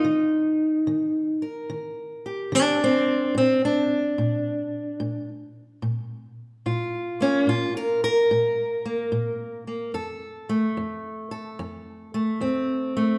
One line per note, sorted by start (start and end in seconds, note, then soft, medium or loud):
0.00 1.43 D#4 medium
0.04 0.82 D#3 medium
0.87 1.64 D#3 medium
1.42 3.41 A#4 soft
1.70 2.47 D#3 medium
2.26 2.81 G4 soft
2.52 3.29 D#3 medium
2.52 3.36 D4 loud
2.84 3.36 C4 medium
3.35 4.12 A#2 medium
3.35 3.64 C4 medium
3.65 5.28 D4 medium
4.18 4.95 A#2 medium
5.00 5.77 A#2 medium
5.82 6.59 A#2 medium
6.66 7.42 A#2 medium
6.66 7.49 F4 medium
7.21 8.84 A#3 soft
7.21 7.48 C#4 medium
7.47 8.24 A#2 medium
7.47 7.75 F4 medium
7.77 8.03 A#4 medium
8.04 9.94 A#4 medium
8.31 9.07 A#2 medium
8.85 9.66 A#3 soft
9.12 9.88 A#2 medium
9.67 9.91 A#3 soft
9.94 10.71 F2 medium
9.94 11.31 A4 medium
10.49 12.14 A3 medium
10.77 11.53 F2 medium
11.31 13.18 A4 medium
11.59 12.35 F2 medium
12.14 12.96 A3 medium
12.41 13.17 F2 medium
12.41 13.18 C4 medium
12.97 13.18 A3 medium